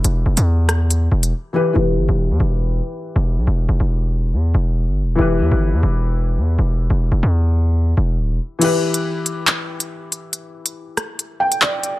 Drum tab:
CC |----------------|----------------|----------------|----------------|
HH |x--x--x-x--x----|----------------|----------------|----------------|
CP |----------------|----------------|----------------|----------------|
SD |------r---------|----------------|----------------|----------------|

CC |----------------|x---------------|----------------|
HH |----------------|x--x--x-x--x--x-|x--x--x-x--x--x-|
CP |----------------|--------x-------|------------x---|
SD |----------------|----------------|------r---------|